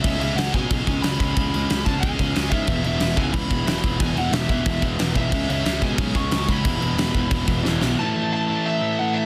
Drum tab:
CC |xxxxxxxx|xxxxxxxx|xxxxxxxx|xxxxxxxx|
SD |--o---o-|--o---o-|--o---o-|--o---o-|
BD |o--ooo-o|o--ooo-o|o--ooo-o|o--ooo-o|

CC |xxxxxxxx|xxxxxx--|--------|
SD |--o---o-|--o---oo|--------|
BD |o--ooo-o|o--ooo--|--------|